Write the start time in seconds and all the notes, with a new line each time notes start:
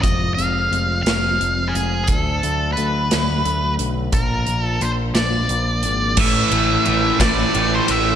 0.02 F1 F3 G#3 C4 F4 D#5, kick, closed hi-hat
0.35 F1 F3 G#3 C4 F4 F5, closed hi-hat
0.70 F1 F3 G#3 C4 F4, closed hi-hat
1.03 F1 F3 G#3 C4 F4 F5, closed hi-hat
1.07 snare
1.39 F1 F3 G#3 C4 F4, closed hi-hat
1.68 G#4
1.74 F1 F3 G#3 C4 F4, closed hi-hat
2.04 G#4, closed hi-hat
2.08 D2 D3 F#3 A3 D4, kick
2.15 A4
2.43 D2 D3 F#3 A3 D4, closed hi-hat
2.72 B4
2.77 D2 D3 F#3 A3 D4, closed hi-hat
3.11 D2 D3 F#3 A3 D4, snare, closed hi-hat
3.44 D2 D3 F#3 A3 D4, closed hi-hat
3.79 B1 D3 F#3 A3 D4, closed hi-hat
4.12 A#1 A#2 F3 A#3 D4 A#4, kick, closed hi-hat
4.46 A#1 A#2 F3 A#3 D4, closed hi-hat
4.63 A4
4.81 A#1 A#2 F3 A#3 D4 C5, closed hi-hat
5.14 A#1 A#2 F3 A#3 D4 D5, snare, closed hi-hat
5.49 A#1 A#2 F3 A#3 D4, closed hi-hat
5.83 G#1 A#2 F3 A#3 D4, closed hi-hat
6.17 A1 A2 E3 A3 E5, kick, crash
6.51 A1 A2 E3 A3, ride
6.85 A1 A2 E3 A3, ride
7.19 A1 A2 E3 A3 D5, kick, snare, ride
7.54 A1 A2 E3 A3, ride
7.75 C5
7.87 A1 A2 E3 A3 E5, ride